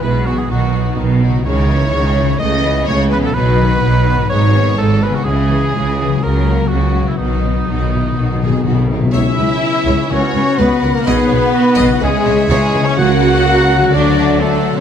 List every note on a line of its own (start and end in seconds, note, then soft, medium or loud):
0.00 0.45 B1 medium
0.00 0.23 B2 medium
0.00 0.31 B2 medium
0.00 0.45 B2 medium
0.00 0.46 G#3 soft
0.00 0.48 E4 medium
0.00 0.26 E4 medium
0.00 0.28 B4 medium
0.00 0.27 B4 medium
0.00 0.50 E5 soft
0.04 0.27 G#3 medium
0.25 0.50 E3 medium
0.25 0.50 B3 medium
0.25 0.49 B3 medium
0.25 0.40 F#4 loud
0.25 0.38 F#4 medium
0.25 0.50 G#4 medium
0.33 1.38 B2 medium
0.37 1.41 B3 medium
0.37 0.50 G#4 medium
0.37 0.51 G#4 medium
0.42 1.43 F#4 medium
0.46 0.92 B1 medium
0.46 0.72 B3 medium
0.46 0.71 D#4 medium
0.46 0.95 F#4 medium
0.46 1.40 D#5 medium
0.50 0.93 B2 medium
0.50 0.72 D#3 medium
0.50 0.97 F#4 medium
0.73 0.98 F#3 medium
0.73 0.97 B3 medium
0.73 0.98 D#4 medium
0.73 0.97 F#4 medium
0.96 1.39 B1 medium
0.96 1.40 B2 medium
0.96 1.21 D#3 medium
0.96 1.21 B3 medium
0.96 1.21 D#4 medium
1.19 1.45 F#3 medium
1.19 1.44 B3 medium
1.19 1.45 D#4 medium
1.19 1.44 F#4 medium
1.27 2.21 C#3 medium
1.32 2.35 G#3 medium
1.36 2.30 E4 medium
1.41 2.35 C#5 medium
1.41 2.40 D#5 medium
1.45 1.87 C#2 medium
1.45 1.88 C#3 medium
1.45 1.67 D#3 medium
1.45 1.67 G#3 medium
1.45 1.66 D#4 medium
1.45 1.67 E4 medium
1.45 2.37 C#5 loud
1.67 1.91 D#3 medium
1.67 1.93 E3 medium
1.67 1.92 D#4 medium
1.67 1.91 E4 medium
1.92 2.35 C#2 medium
1.92 2.35 C#3 medium
1.92 2.16 D#3 medium
1.92 2.16 G#3 medium
1.92 2.15 D#4 medium
1.92 2.16 E4 medium
2.16 2.40 D#3 medium
2.16 2.40 E3 medium
2.16 2.40 D#4 medium
2.16 2.40 E4 medium
2.22 3.28 C#3 medium
2.27 3.31 A3 medium
2.31 3.33 E4 medium
2.36 2.62 A3 medium
2.36 2.62 C#4 medium
2.36 3.31 B4 medium
2.36 2.86 D#5 loud
2.36 2.87 D#5 loud
2.40 2.82 C#2 medium
2.40 2.82 C#3 medium
2.63 2.87 E3 medium
2.63 2.87 B3 medium
2.63 2.88 B3 medium
2.63 2.88 E4 medium
2.85 3.30 C#2 loud
2.85 3.30 C#3 medium
2.85 3.12 A3 medium
2.85 3.12 C#4 medium
2.85 3.10 C#5 loud
2.85 2.99 C#5 loud
3.10 3.35 E3 medium
3.10 3.35 B3 medium
3.10 3.22 B4 medium
3.10 3.18 B4 loud
3.14 3.37 B3 medium
3.14 3.37 E4 medium
3.19 4.24 B2 medium
3.19 3.35 A4 medium
3.23 4.26 F#3 medium
3.23 3.35 A4 loud
3.28 4.22 D#4 medium
3.32 3.77 B1 loud
3.32 3.78 B2 medium
3.32 3.58 F#3 medium
3.32 3.58 D#4 medium
3.32 4.26 B4 medium
3.32 4.29 B4 loud
3.32 4.28 B4 loud
3.60 3.84 D#3 medium
3.60 3.84 B3 medium
3.60 3.83 F#4 medium
3.83 4.25 B1 loud
3.83 4.25 B2 medium
3.83 4.08 F#3 medium
3.83 4.08 D#4 medium
4.07 4.31 D#3 medium
4.07 4.32 B3 medium
4.07 4.32 F#4 medium
4.14 5.20 G#2 medium
4.18 5.12 G#3 medium
4.23 5.25 D#4 medium
4.27 4.73 G#1 loud
4.27 4.53 G#3 medium
4.27 5.27 B4 medium
4.27 4.77 C#5 loud
4.31 4.74 G#2 medium
4.31 4.54 D#4 medium
4.31 4.78 C#5 loud
4.55 4.79 D#3 medium
4.55 4.79 B3 medium
4.55 4.79 G#4 medium
4.78 5.22 G#1 medium
4.78 5.21 G#2 medium
4.78 5.03 G#3 medium
4.78 5.03 D#4 medium
4.78 5.04 A4 loud
4.78 5.03 A4 loud
5.03 5.27 D#3 medium
5.03 5.27 B3 medium
5.03 5.27 G#4 medium
5.03 5.17 B4 loud
5.03 5.16 B4 medium
5.09 6.05 C#3 medium
5.14 6.18 G#3 medium
5.14 5.26 F#4 loud
5.14 5.28 F#4 medium
5.18 6.20 E4 medium
5.22 5.49 G#3 medium
5.22 6.25 G#4 loud
5.22 7.20 C#5 medium
5.27 5.69 C#2 medium
5.27 5.69 C#3 medium
5.27 5.49 C#4 medium
5.27 5.50 E4 medium
5.27 6.23 G#4 medium
5.50 5.74 E3 medium
5.50 5.75 C#4 medium
5.50 5.73 E4 medium
5.74 6.17 C#2 medium
5.74 6.17 C#3 medium
5.74 5.98 G#3 medium
5.74 5.98 C#4 medium
5.74 5.99 E4 medium
5.99 6.23 E3 medium
5.99 6.22 C#4 medium
5.99 6.23 E4 medium
6.06 7.14 C#3 medium
6.10 7.06 F#3 medium
6.15 7.10 F#4 medium
6.19 6.65 C#2 medium
6.19 6.65 C#3 medium
6.19 6.45 A#3 medium
6.19 6.45 C#4 medium
6.19 7.20 A#4 medium
6.19 6.71 A#4 medium
6.19 6.69 A#4 medium
6.24 6.45 F#3 medium
6.48 6.71 F#3 medium
6.48 6.72 A#3 medium
6.48 6.71 A#3 medium
6.48 6.71 F#4 medium
6.68 7.14 C#2 medium
6.68 7.14 C#3 medium
6.68 6.95 F#3 medium
6.68 6.95 A#3 medium
6.68 7.06 F#4 medium
6.68 7.07 F#4 medium
6.72 6.97 C#4 medium
6.94 7.19 F#3 medium
6.94 7.20 A#3 medium
6.94 7.19 F#4 medium
7.02 9.08 B2 medium
7.07 9.11 F#3 soft
7.07 7.17 E4 medium
7.07 7.21 E4 medium
7.11 9.13 F#4 soft
7.16 7.63 B1 medium
7.16 7.63 B2 medium
7.16 8.86 D#4 medium
7.16 7.43 D#4 medium
7.16 9.15 B4 soft
7.20 7.28 B2 soft
7.20 7.43 D#3 medium
7.20 7.43 F#3 medium
7.20 8.88 D#4 medium
7.20 7.43 F#4 medium
7.29 7.35 B2 soft
7.37 7.43 B2 soft
7.44 7.67 D#3 medium
7.44 7.67 F#3 medium
7.44 7.68 B3 medium
7.44 7.68 D#4 medium
7.52 7.58 B2 soft
7.59 7.65 B2 soft
7.66 8.12 B1 medium
7.66 7.73 B2 soft
7.66 8.12 B2 medium
7.66 7.91 D#3 medium
7.66 7.90 F#3 medium
7.66 7.91 F#4 medium
7.75 7.81 B2 soft
7.82 7.88 B2 soft
7.89 7.95 B2 soft
7.89 8.16 D#3 medium
7.89 8.15 F#3 soft
7.94 8.02 B2 medium
7.94 8.18 E4 medium
8.04 8.11 B2 medium
8.12 8.60 B1 medium
8.12 8.19 B2 medium
8.12 8.41 F#4 medium
8.16 8.60 B2 medium
8.16 8.27 B2 medium
8.16 8.40 D#3 medium
8.16 8.40 F#3 medium
8.28 8.34 B2 medium
8.35 8.42 B2 medium
8.41 8.48 B2 medium
8.41 8.66 D#3 medium
8.41 8.65 F#3 medium
8.41 8.66 G#4 medium
8.49 8.55 B2 medium
8.56 8.63 B2 medium
8.64 9.09 B1 medium
8.64 8.71 B2 medium
8.64 9.09 B2 medium
8.64 8.89 D#3 medium
8.64 8.89 F#3 medium
8.64 8.90 F#4 medium
8.72 8.78 B2 medium
8.79 8.87 B2 medium
8.88 8.93 B2 loud
8.88 9.15 D#3 soft
8.88 9.15 F#3 medium
8.88 9.14 D#4 medium
8.94 9.02 B2 medium
8.94 9.92 C#3 medium
9.01 9.10 B2 medium
9.01 9.96 C#4 medium
9.06 10.08 E4 medium
9.10 9.22 C#2 medium
9.10 10.07 E4 loud
9.10 10.11 G#4 medium
9.10 9.36 C#5 medium
9.10 10.06 E5 medium
9.10 10.06 E6 loud
9.14 10.08 E3 medium
9.14 10.07 C#4 medium
9.14 10.07 E4 loud
9.14 10.12 E5 loud
9.14 10.07 E5 loud
9.38 9.46 C#2 medium
9.38 9.47 C#2 medium
9.38 9.46 B4 medium
9.86 9.94 C#2 loud
9.86 9.95 C#2 medium
9.86 10.09 C#5 medium
9.93 11.00 C#3 medium
9.97 11.02 C#4 medium
10.02 10.98 F#4 medium
10.06 11.03 B4 medium
10.10 10.19 C#2 medium
10.10 10.20 C#2 medium
10.10 10.79 C#3 loud
10.10 11.07 F#3 medium
10.10 12.03 B3 medium
10.10 10.59 C#4 medium
10.10 10.59 C#4 loud
10.10 11.04 F#4 medium
10.10 10.18 A#4 medium
10.10 10.63 C#5 medium
10.10 10.60 C#5 loud
10.10 12.02 F#5 medium
10.10 10.59 C#6 medium
10.34 10.42 C#2 medium
10.34 10.43 C#2 medium
10.34 10.43 B4 medium
10.58 10.67 C#2 loud
10.58 10.67 C#2 medium
10.58 10.94 B3 loud
10.58 10.95 B3 medium
10.58 10.95 B4 loud
10.58 10.81 B4 medium
10.58 10.94 B4 medium
10.58 10.93 B5 loud
10.81 10.91 C#2 medium
10.81 10.89 A#4 medium
10.90 11.96 B2 medium
10.90 11.08 A#5 loud
10.95 11.07 A#3 loud
10.95 11.07 A#3 medium
10.95 11.98 D#4 medium
10.95 11.06 A#4 medium
10.95 11.07 A#4 medium
10.99 12.00 F#4 medium
11.04 11.16 B1 loud
11.04 11.15 B2 loud
11.04 12.00 D#3 medium
11.04 12.00 B3 loud
11.04 12.03 B4 medium
11.04 12.00 B4 loud
11.04 12.06 B4 loud
11.04 11.28 D#5 loud
11.04 12.01 B5 loud
11.09 11.56 G#4 medium
11.27 11.35 C#5 medium
11.31 11.39 B1 medium
11.31 11.39 B2 medium
11.55 12.04 F#4 medium
11.76 11.86 B1 loud
11.76 11.86 B2 loud
11.76 11.99 D#5 loud
11.84 12.79 C#3 medium
11.93 12.96 E4 medium
11.97 12.98 E3 medium
11.97 12.08 B4 medium
11.97 12.98 E5 medium
12.01 12.11 C#2 medium
12.01 12.10 C#3 medium
12.01 12.48 G#3 loud
12.01 12.49 G#3 loud
12.01 12.98 C#4 loud
12.01 12.47 G#4 loud
12.01 12.50 G#4 loud
12.01 13.45 C#5 loud
12.01 12.98 E5 medium
12.01 12.49 G#5 loud
12.25 12.34 C#2 medium
12.25 12.34 C#3 medium
12.25 12.33 C#5 medium
12.48 12.58 C#2 loud
12.48 12.58 C#3 loud
12.48 12.85 G#3 loud
12.48 12.86 G#3 loud
12.48 12.85 G#4 loud
12.48 12.88 G#4 loud
12.48 12.72 C#5 loud
12.48 12.86 G#5 loud
12.74 12.82 C#2 medium
12.74 12.82 C#3 medium
12.74 12.83 B4 medium
12.80 13.87 C#3 medium
12.80 12.97 C#5 loud
12.80 12.96 C#6 loud
12.85 13.89 A#3 medium
12.85 12.99 C#4 loud
12.85 12.93 C#4 loud
12.85 12.98 C#5 loud
12.90 13.83 F#4 medium
12.94 13.89 C#2 loud
12.94 14.80 F#3 loud
12.94 13.91 A#3 loud
12.94 13.89 A#4 medium
12.94 13.93 C#5 medium
12.94 13.92 F#5 loud
12.94 13.89 F#5 loud
12.94 13.91 F#6 loud
12.99 13.90 C#3 loud
12.99 13.66 C#3 loud
12.99 13.92 F#4 loud
12.99 13.92 F#5 loud
13.46 13.96 A#4 loud
13.75 14.80 D3 medium
13.80 14.74 F#3 medium
13.91 14.80 D2 loud
13.91 14.80 D3 loud
13.91 14.80 A3 medium
13.91 14.40 F#4 medium
13.91 14.39 A4 medium
13.91 14.39 D5 loud
13.91 14.39 F#5 medium
13.91 14.43 D6 loud
13.95 14.41 D4 loud
13.95 14.42 D4 loud
14.39 14.77 A3 medium
14.39 14.77 A3 loud
14.39 14.76 A4 medium
14.39 14.78 A4 medium
14.39 14.80 A4 medium
14.39 14.80 F#5 medium
14.39 14.79 A5 medium
14.71 14.80 B2 medium
14.76 14.80 F#3 medium
14.76 14.80 C#5 medium
14.76 14.80 C#6 medium